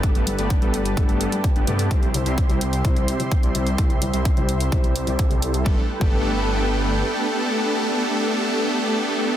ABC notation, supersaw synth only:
X:1
M:4/4
L:1/16
Q:1/4=128
K:G
V:1 name="Supersaw synth"
[A,B,DGA]2 z [A,B,DGd]2 [A,B,DGA] z2 [A,B,DGA]3 z2 [A,B,DGB] [A,B,DGd]2 | [G,CEGc]2 z [G,CEGe]2 [G,CEGc] z2 [G,CEGc]3 z2 [G,CEGd] [G,CEGe]2 | [G,CEGc]2 z [G,CEGe]2 [G,CEGc] z2 [G,CEGc]3 [G,CEGd] [G,CEGA]4 | [A,B,DGA] z2 [A,B,DGA]12- [A,B,DGA]- |
[A,B,DGA]16 |]